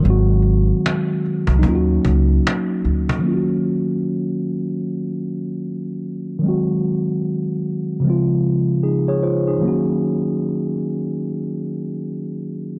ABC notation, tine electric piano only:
X:1
M:4/4
L:1/16
Q:"Swing 16ths" 1/4=75
K:Ebdor
V:1 name="Tine electric piano"
z16 | z16 | z12 [EA] [Ad] [Fc] [EA]- | [EA] z12 z3 |]
V:2 name="Tine electric piano"
[E,G,A,CG]8 [G,B,DEFG]8 | [E,G,B,DFG]16 | [E,G,A,CG]8 [D,F,A,CF]8 | [E,G,B,DG]16 |]